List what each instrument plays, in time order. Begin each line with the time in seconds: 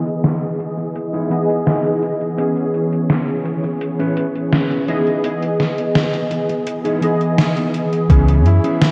Already playing: synth keys E3 B3 G#4 D#5, string machine E3 B3 G#4 D#5
0.07 closed hi-hat
0.24 snare, closed hi-hat
0.43 closed hi-hat
0.59 muted clean electric guitar stroke, closed hi-hat
0.77 muted clean electric guitar stroke, closed hi-hat
0.95 muted clean electric guitar stroke, closed hi-hat
1.13 clean electric guitar D#4 E4 G#4, closed hi-hat
1.29 synth keys E3 B3 G#4 D#5, closed hi-hat
1.50 closed hi-hat
1.66 clean electric guitar D#4 E4 G#4, snare, closed hi-hat
1.85 closed hi-hat
2.03 closed hi-hat
2.21 closed hi-hat
2.37 synth keys E3 B3 C#4 G#4, string machine C#5, muted clean electric guitar stroke, closed hi-hat
2.56 muted clean electric guitar stroke, closed hi-hat
2.74 muted clean electric guitar stroke, closed hi-hat
2.93 closed hi-hat
3.10 snare, closed hi-hat
3.28 closed hi-hat
3.45 muted clean electric guitar stroke, closed hi-hat
3.63 muted clean electric guitar stroke, closed hi-hat
3.81 muted clean electric guitar stroke, closed hi-hat
3.99 clean electric guitar C#4 E4 B4, closed hi-hat
4.17 closed hi-hat
4.35 closed hi-hat
4.52 clean electric guitar C#4 E4 B4, snare, closed hi-hat
4.71 closed hi-hat
4.88 synth keys E3 B3 G#4 D#5, clean electric guitar D#4 E4 G#4, string machine G#4 D#5, closed hi-hat
5.07 closed hi-hat
5.23 synth keys E3 B3 G#4 D#5, closed hi-hat
5.42 muted clean electric guitar stroke, closed hi-hat
5.60 muted clean electric guitar stroke, snare, closed hi-hat
5.78 closed hi-hat
5.95 snare, closed hi-hat
6.14 closed hi-hat
6.31 muted clean electric guitar stroke, closed hi-hat
6.49 muted clean electric guitar stroke, closed hi-hat
6.66 muted clean electric guitar stroke, closed hi-hat
6.84 clean electric guitar D#4 E4 G#4, closed hi-hat
7.01 synth keys E3 B3 G#4 D#5, closed hi-hat
7.21 closed hi-hat
7.38 clean electric guitar D#4 E4 G#4, snare, closed hi-hat
7.57 closed hi-hat
7.74 closed hi-hat
7.93 closed hi-hat
8.08 fingered electric bass C#2, synth keys E3 B3 C#4 G#4, clean electric guitar B3 C#4 E4 G#4, string machine G#4 C#5 B5, kick, closed hi-hat
8.28 closed hi-hat
8.45 fingered electric bass F#2, flugelhorn E4, closed hi-hat
8.64 clean electric guitar B3 C#4 E4 G#4, closed hi-hat
8.81 snare, closed hi-hat